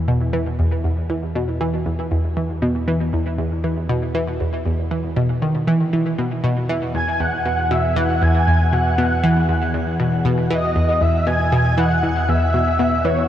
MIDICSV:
0, 0, Header, 1, 4, 480
1, 0, Start_track
1, 0, Key_signature, 4, "major"
1, 0, Tempo, 508475
1, 76, Time_signature, 4, 2, 24, 8
1, 12537, End_track
2, 0, Start_track
2, 0, Title_t, "Soft synth lead"
2, 0, Program_c, 0, 80
2, 6556, Note_on_c, 0, 80, 106
2, 6798, Note_on_c, 0, 78, 101
2, 6812, Note_off_c, 0, 80, 0
2, 7279, Note_on_c, 0, 76, 93
2, 7293, Note_off_c, 0, 78, 0
2, 7518, Note_on_c, 0, 78, 94
2, 7532, Note_off_c, 0, 76, 0
2, 7758, Note_on_c, 0, 80, 108
2, 7772, Note_off_c, 0, 78, 0
2, 8238, Note_on_c, 0, 78, 91
2, 8252, Note_off_c, 0, 80, 0
2, 9197, Note_off_c, 0, 78, 0
2, 9924, Note_on_c, 0, 75, 105
2, 10399, Note_on_c, 0, 76, 99
2, 10413, Note_off_c, 0, 75, 0
2, 10633, Note_off_c, 0, 76, 0
2, 10639, Note_on_c, 0, 80, 109
2, 11119, Note_on_c, 0, 78, 107
2, 11133, Note_off_c, 0, 80, 0
2, 11596, Note_on_c, 0, 76, 110
2, 11610, Note_off_c, 0, 78, 0
2, 12314, Note_on_c, 0, 73, 93
2, 12328, Note_off_c, 0, 76, 0
2, 12537, Note_off_c, 0, 73, 0
2, 12537, End_track
3, 0, Start_track
3, 0, Title_t, "Synth arpeggio sound"
3, 0, Program_c, 1, 84
3, 76, Note_on_c, 1, 47, 98
3, 185, Note_off_c, 1, 47, 0
3, 313, Note_on_c, 1, 52, 95
3, 423, Note_off_c, 1, 52, 0
3, 557, Note_on_c, 1, 40, 73
3, 622, Note_off_c, 1, 40, 0
3, 795, Note_on_c, 1, 40, 73
3, 861, Note_off_c, 1, 40, 0
3, 1036, Note_on_c, 1, 52, 77
3, 1145, Note_off_c, 1, 52, 0
3, 1279, Note_on_c, 1, 47, 93
3, 1386, Note_off_c, 1, 47, 0
3, 1517, Note_on_c, 1, 52, 93
3, 1625, Note_off_c, 1, 52, 0
3, 1756, Note_on_c, 1, 40, 75
3, 1821, Note_off_c, 1, 40, 0
3, 1995, Note_on_c, 1, 40, 80
3, 2061, Note_off_c, 1, 40, 0
3, 2237, Note_on_c, 1, 52, 73
3, 2345, Note_off_c, 1, 52, 0
3, 2474, Note_on_c, 1, 47, 96
3, 2584, Note_off_c, 1, 47, 0
3, 2716, Note_on_c, 1, 52, 94
3, 2824, Note_off_c, 1, 52, 0
3, 2955, Note_on_c, 1, 40, 81
3, 3021, Note_off_c, 1, 40, 0
3, 3193, Note_on_c, 1, 40, 72
3, 3260, Note_off_c, 1, 40, 0
3, 3434, Note_on_c, 1, 52, 72
3, 3544, Note_off_c, 1, 52, 0
3, 3675, Note_on_c, 1, 47, 99
3, 3784, Note_off_c, 1, 47, 0
3, 3912, Note_on_c, 1, 52, 97
3, 4023, Note_off_c, 1, 52, 0
3, 4156, Note_on_c, 1, 40, 71
3, 4221, Note_off_c, 1, 40, 0
3, 4393, Note_on_c, 1, 40, 72
3, 4460, Note_off_c, 1, 40, 0
3, 4637, Note_on_c, 1, 52, 73
3, 4745, Note_off_c, 1, 52, 0
3, 4876, Note_on_c, 1, 47, 96
3, 4985, Note_off_c, 1, 47, 0
3, 5117, Note_on_c, 1, 51, 73
3, 5279, Note_off_c, 1, 51, 0
3, 5357, Note_on_c, 1, 52, 93
3, 5422, Note_off_c, 1, 52, 0
3, 5598, Note_on_c, 1, 52, 75
3, 5662, Note_off_c, 1, 52, 0
3, 5839, Note_on_c, 1, 47, 79
3, 5903, Note_off_c, 1, 47, 0
3, 6077, Note_on_c, 1, 47, 98
3, 6185, Note_off_c, 1, 47, 0
3, 6319, Note_on_c, 1, 52, 94
3, 6426, Note_off_c, 1, 52, 0
3, 6558, Note_on_c, 1, 40, 70
3, 6622, Note_off_c, 1, 40, 0
3, 6796, Note_on_c, 1, 40, 82
3, 6861, Note_off_c, 1, 40, 0
3, 7038, Note_on_c, 1, 47, 74
3, 7102, Note_off_c, 1, 47, 0
3, 7278, Note_on_c, 1, 47, 94
3, 7386, Note_off_c, 1, 47, 0
3, 7518, Note_on_c, 1, 52, 101
3, 7625, Note_off_c, 1, 52, 0
3, 7758, Note_on_c, 1, 40, 79
3, 7822, Note_off_c, 1, 40, 0
3, 7999, Note_on_c, 1, 40, 75
3, 8063, Note_off_c, 1, 40, 0
3, 8238, Note_on_c, 1, 47, 74
3, 8302, Note_off_c, 1, 47, 0
3, 8477, Note_on_c, 1, 47, 97
3, 8585, Note_off_c, 1, 47, 0
3, 8718, Note_on_c, 1, 52, 97
3, 8826, Note_off_c, 1, 52, 0
3, 8957, Note_on_c, 1, 40, 73
3, 9022, Note_off_c, 1, 40, 0
3, 9197, Note_on_c, 1, 40, 72
3, 9262, Note_off_c, 1, 40, 0
3, 9437, Note_on_c, 1, 47, 76
3, 9502, Note_off_c, 1, 47, 0
3, 9676, Note_on_c, 1, 47, 99
3, 9785, Note_off_c, 1, 47, 0
3, 9917, Note_on_c, 1, 52, 97
3, 10025, Note_off_c, 1, 52, 0
3, 10156, Note_on_c, 1, 40, 74
3, 10221, Note_off_c, 1, 40, 0
3, 10396, Note_on_c, 1, 40, 73
3, 10461, Note_off_c, 1, 40, 0
3, 10637, Note_on_c, 1, 47, 80
3, 10701, Note_off_c, 1, 47, 0
3, 10876, Note_on_c, 1, 47, 96
3, 10985, Note_off_c, 1, 47, 0
3, 11116, Note_on_c, 1, 52, 99
3, 11225, Note_off_c, 1, 52, 0
3, 11358, Note_on_c, 1, 40, 78
3, 11422, Note_off_c, 1, 40, 0
3, 11599, Note_on_c, 1, 40, 80
3, 11663, Note_off_c, 1, 40, 0
3, 11839, Note_on_c, 1, 47, 72
3, 11903, Note_off_c, 1, 47, 0
3, 12077, Note_on_c, 1, 47, 96
3, 12185, Note_off_c, 1, 47, 0
3, 12316, Note_on_c, 1, 52, 95
3, 12425, Note_off_c, 1, 52, 0
3, 12537, End_track
4, 0, Start_track
4, 0, Title_t, "Synth drone"
4, 0, Program_c, 2, 95
4, 0, Note_on_c, 2, 40, 83
4, 5813, Note_off_c, 2, 40, 0
4, 5835, Note_on_c, 2, 40, 85
4, 12537, Note_off_c, 2, 40, 0
4, 12537, End_track
0, 0, End_of_file